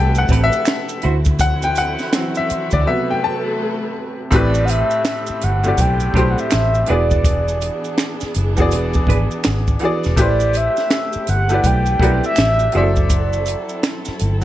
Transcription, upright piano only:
0.00 1.04 C3 medium
0.00 1.05 G3 medium
0.00 1.04 B3 medium
0.00 0.44 E5 medium
0.00 0.18 F#5 medium
0.00 1.05 G5 loud
0.00 1.04 A5 medium
0.18 0.43 F#5 medium
0.44 1.12 E5 loud
1.41 1.64 F#5 medium
1.64 1.77 G5 medium
1.78 2.38 F#5 loud
2.14 2.65 E3 medium
2.14 2.65 F#3 medium
2.14 2.66 C4 medium
2.37 2.45 E5 medium
2.73 2.87 D5 medium
2.87 3.38 C3 soft
2.87 3.39 F#3 soft
2.87 3.39 B3 medium
2.87 3.10 E5 medium
3.10 3.23 G5 medium
3.24 3.92 A5 medium
4.31 5.42 A2 medium
4.31 5.43 A3 medium
4.31 5.44 C4 medium
4.31 5.44 G4 medium
4.36 5.45 B4 loud
5.64 6.09 A2 medium
5.64 6.09 A3 medium
5.64 6.10 C4 medium
5.64 6.11 G4 medium
5.68 6.11 D5 medium
6.14 6.87 A2 medium
6.14 6.88 A3 medium
6.14 6.89 C4 medium
6.14 6.89 G4 medium
6.19 6.90 C5 medium
6.87 8.19 E3 medium
6.87 8.19 B3 medium
6.87 8.20 F#4 medium
6.87 8.20 G#4 medium
6.92 8.21 D5 medium
8.56 9.67 E3 medium
8.56 9.68 B3 medium
8.56 9.69 F#4 medium
8.56 9.69 G#4 medium
8.62 9.70 D5 medium
9.80 10.13 E3 medium
9.80 10.14 B3 medium
9.80 10.14 F#4 medium
9.80 10.15 G#4 medium
9.85 10.16 D5 medium
10.16 11.28 A3 medium
10.16 11.29 E4 medium
10.16 11.29 G4 medium
10.16 11.30 B4 medium
10.21 11.30 C5 medium
11.49 11.94 A3 medium
11.49 11.95 E4 medium
11.49 11.95 G4 medium
11.49 11.96 B4 medium
11.54 11.97 D5 medium
11.99 12.73 A3 medium
11.99 12.73 E4 medium
11.99 12.74 G4 medium
11.99 12.75 B4 medium
12.04 12.75 D5 medium
12.73 14.04 F#3 medium
12.73 14.04 F#4 medium
12.73 12.82 G#4 medium
12.73 14.06 C5 medium
12.77 14.06 E5 medium
12.81 14.08 A4 medium

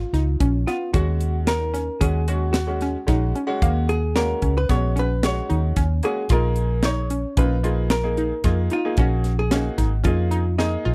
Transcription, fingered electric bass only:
0.13 0.37 C#2 medium
0.40 0.64 A#1 medium
0.94 1.88 D#2 loud
2.01 2.95 D#2 medium
3.08 3.32 A#1 medium
3.62 4.33 D#2 loud
4.42 4.66 C#2 medium
4.69 5.40 A#1 medium
5.51 5.74 D#2 medium
5.76 6.00 D#2 medium
6.30 7.24 A#1 loud
7.37 8.31 A#1 loud
8.44 8.67 F2 medium
8.98 9.68 A#1 loud
9.78 10.01 G#1 medium
10.05 10.75 F2 medium
10.86 10.95 A#1 medium

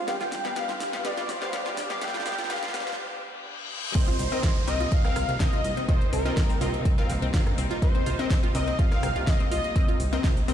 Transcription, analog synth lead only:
0.08 0.58 G5 loud
0.56 1.04 F5 loud
1.05 1.30 D5 loud
1.29 1.55 C5 medium
1.53 2.03 D5 loud
2.02 2.49 G5 loud
2.50 2.95 F5 loud
3.95 4.64 C5 loud
4.68 4.90 D#5 loud
4.92 5.37 F5 loud
5.40 5.90 D#5 loud
5.89 6.12 C5 loud
6.13 6.81 A#4 medium
7.82 8.27 C5 loud
8.55 8.81 D#5 loud
8.79 9.29 F5 loud
9.27 9.51 D#5 loud
9.52 9.97 D#5 medium

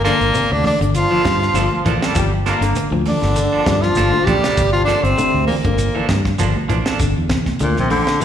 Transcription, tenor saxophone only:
0.04 0.53 A#3 loud
0.52 0.66 D4 loud
0.67 0.80 D4 medium
0.96 1.82 F4 loud
3.08 3.84 D4 medium
3.82 4.26 F4 medium
4.25 4.72 G4 loud
4.72 4.84 F4 loud
4.85 5.04 D4 loud
5.03 5.46 C4 loud
5.47 5.55 A#3 medium
5.63 6.20 A#3 medium

